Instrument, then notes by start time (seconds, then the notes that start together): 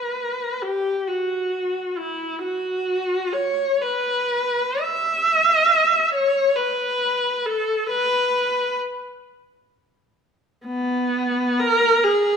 viola
Already playing: B4
0.62 G4
1.08 F#4
1.97 E4
2.43 F#4
3.32 C#5
3.81 B4
4.80 E5
6.14 C#5
6.56 B4
7.46 A4
7.89 B4
10.66 B3
11.60 A#4
12.04 G#4